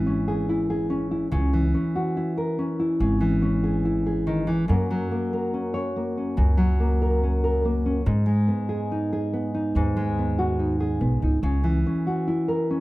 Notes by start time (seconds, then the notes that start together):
Already playing: G#1 E3 E4 A#4
0.06 C#4
0.28 G#4
0.49 E4
0.70 G#4
0.90 C#4
1.11 E4
1.31 C#2 C#3
1.53 E3
1.74 C#4
1.96 F#4
2.17 E4
2.37 A#4
2.59 C#4
2.79 E4
3.00 G#1 C#3
3.20 E3
3.42 C#4
3.64 G#4
3.85 E4
4.06 G#4
4.27 D#3
4.47 E3
4.68 F#2 F#3 A#3 C#4 A#4
4.91 F#3
5.11 A#3
5.33 A#4
5.54 C#4
5.74 C#5
5.96 A#3
6.17 C#4
6.37 C#2 F#2
6.57 F#3
6.80 A#3
7.02 A#4
7.23 C#4
7.44 A#4
7.65 A#3
7.86 C#4
8.06 G#2
8.26 G#3
8.48 B3
8.69 G#4
8.92 D#4
9.13 G#4
9.33 B3
9.54 D#4
9.75 D#2 G#2
9.97 G#3
10.19 B3
10.39 F#4
10.59 D#4
10.80 G#4
11.01 B1 B3
11.22 C#2 D#4
11.43 C#2 C#3
11.64 E3
11.86 C#4
12.07 F#4
12.28 E4
12.48 A#4
12.70 C#4